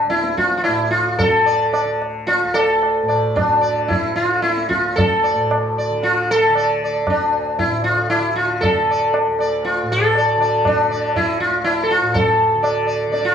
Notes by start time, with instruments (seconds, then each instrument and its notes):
Already playing: tanpura A2 D3
0.06 tanpura D2, sitar E4
0.10 tabla te
0.24 tabla te
0.37 sitar F4, tabla ke
0.51 tabla te
0.57 sitar F4
0.64 tanpura A2, sitar E4, tabla na
0.90 sitar F4
1.18 sitar A4, tabla tin, tabla ge
1.24 tanpura D3
1.46 sitar D5
1.73 sitar D5, tabla na
1.84 tanpura D3
2.02 tabla na
2.27 sitar F4, tabla tin
2.43 tanpura D2
2.54 sitar A4, tabla na
2.83 tabla na
3.02 tanpura A2
3.08 sitar D5, tabla na
3.36 sitar D4, tabla na, tabla ge
3.61 tanpura D3, sitar D5
3.88 sitar E4, tabla tin, tabla ge
4.16 tanpura D3, sitar F4
4.42 sitar E4, tabla te
4.57 tabla te
4.69 sitar F4, tabla ke
4.75 tanpura D2
4.84 tabla te
4.96 sitar A4, tabla tin, tabla ge
5.23 sitar D5
5.33 tanpura A2
5.51 tabla na
5.78 sitar D5
5.90 tanpura D3
6.03 sitar F4, tabla tin
6.31 sitar A4
6.50 tanpura D3
6.55 sitar D5, tabla na
6.84 sitar D5
7.07 tanpura D2, sitar D4, tabla na, tabla ge
7.59 sitar E4, tabla tin, tabla ge
7.64 tanpura A2
7.84 sitar F4
8.10 sitar E4, tabla na
8.18 tanpura D3
8.35 sitar F4
8.61 sitar A4, tabla tin, tabla ge
8.73 tanpura D3
8.91 sitar D5
9.14 tabla na
9.27 tanpura D2
9.39 sitar D5, tabla na
9.65 sitar F4, tabla tin
9.83 tanpura A2
9.92 sitar A4
10.15 sitar D5, tabla na
10.37 tanpura D3, tabla na
10.41 sitar D5
10.65 sitar D4, tabla na, tabla ge
10.91 tanpura D3, sitar D5
11.16 sitar E4, tabla tin, tabla ge
11.40 sitar F4
11.47 tanpura D2
11.64 sitar E4, tabla na
11.83 sitar A4
11.91 sitar F4
12.01 tanpura A2
12.14 sitar A4, tabla tin, tabla ge
12.56 tanpura D3
12.63 sitar D5, tabla na
12.87 sitar D5
13.07 tanpura D3
13.12 sitar D5, tabla tin
13.25 sitar F4